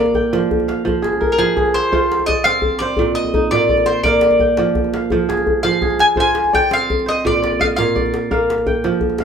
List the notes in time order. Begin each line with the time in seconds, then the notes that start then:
Already playing: A#2 A#3 D5 D#5 F5
0.06 djembe tone
0.14 G5, djembe bass
0.23 djembe slap
0.33 F3, djembe slap
0.43 djembe slap
0.51 djembe bass
0.60 djembe tone
0.68 F5, djembe slap
0.85 F3, djembe bass
1.02 G#4, djembe slap
1.13 djembe slap, djembe tone
1.21 A#4, djembe bass
1.32 A#4
1.38 F3 G#4, djembe slap
1.57 G#4, djembe slap, djembe bass
1.66 djembe tone
1.74 C5, djembe slap
1.92 F4 C5, djembe bass
2.12 djembe slap
2.19 djembe tone
2.26 D5 D#5, djembe bass
2.37 djembe slap
2.44 C4 F5, djembe slap
2.55 djembe slap
2.62 djembe bass
2.71 djembe tone
2.79 C5 D5, djembe slap
2.89 djembe slap
2.97 A#2, djembe bass
3.15 D#5
3.24 djembe tone
3.34 D#4, djembe bass
3.51 A#2 D5, djembe slap
3.69 D5, djembe slap, djembe bass
3.77 djembe slap, djembe tone
3.86 C5, djembe slap
3.96 djembe slap
4.03 A#3 D5 F5, djembe slap, djembe bass
4.21 djembe slap
4.31 djembe slap, djembe tone
4.40 G5, djembe slap, djembe bass
4.57 F3, djembe slap
4.75 djembe slap, djembe bass
4.84 djembe slap, djembe tone
4.94 F5, djembe slap
5.03 djembe slap
5.10 F3, djembe bass
5.29 G#4, djembe slap
5.37 djembe slap, djembe tone
5.47 djembe bass
5.63 F3 F5, djembe slap
5.82 G#4, djembe slap, djembe bass
5.90 djembe tone
5.99 G#5, djembe slap
6.16 F4 C5, djembe bass
6.20 G#5
6.35 djembe slap
6.44 djembe tone
6.53 D5 G5, djembe bass
6.64 djembe slap
6.71 C4 F5, djembe slap
6.82 djembe slap
6.90 djembe bass
6.99 djembe tone
7.06 C5 D#5, djembe slap
7.16 djembe slap
7.25 A#2 D5, djembe bass
7.42 D5, djembe slap
7.52 djembe slap, djembe tone
7.59 D#5 F5, djembe bass
7.76 A#2 F5, djembe slap
7.96 D5, djembe slap, djembe bass
8.06 djembe tone
8.14 djembe slap
8.31 A#3 F5, djembe bass
8.40 djembe slap
8.50 djembe slap
8.58 djembe tone
8.67 G5, djembe bass
8.75 djembe slap
8.84 F3, djembe slap
8.92 djembe slap
9.01 djembe bass
9.10 djembe tone
9.18 F5, djembe slap